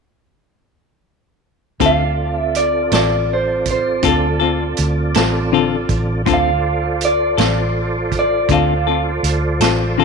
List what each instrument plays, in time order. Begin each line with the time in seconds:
1.80 fingered electric bass D2, clean electric guitar D3 C4 F4 A4, tonewheel organ C4 F4 A4 D5, kick, closed hi-hat
1.86 clean electric guitar F5
2.37 clean electric guitar E5
2.55 clean electric guitar D5, closed hi-hat
2.91 fingered electric bass A1, clean electric guitar C4 F4 A4 D5, snare, closed hi-hat
3.33 clean electric guitar C5
3.65 kick, closed hi-hat
3.71 clean electric guitar C5
4.03 fingered electric bass D2, clean electric guitar D3 C4 F4 A4, kick, closed hi-hat
4.08 clean electric guitar A4
4.40 clean electric guitar C4 F4 A4
4.77 fingered electric bass D2, closed hi-hat
5.14 fingered electric bass A1, clean electric guitar C4 F4 A4, snare, closed hi-hat
5.52 clean electric guitar D3 C4 F4 A4
5.89 fingered electric bass A1, kick, closed hi-hat
6.25 fingered electric bass D2, clean electric guitar D3 C4 F4 A4, tonewheel organ F4 A4 C5 D5, kick, closed hi-hat
6.34 clean electric guitar F5
7.01 closed hi-hat
7.05 clean electric guitar D5
7.37 fingered electric bass A1, clean electric guitar C4 F4 A4, snare, closed hi-hat
8.12 kick, closed hi-hat
8.19 clean electric guitar D5
8.49 fingered electric bass D2, clean electric guitar D3 C4 F4 A4, kick, closed hi-hat
8.53 clean electric guitar F5
8.87 clean electric guitar C4 F4 A4
9.23 fingered electric bass D2, closed hi-hat
9.60 fingered electric bass A1, clean electric guitar C4 F4 A4, snare, closed hi-hat
9.98 clean electric guitar D3 C4 F4 A4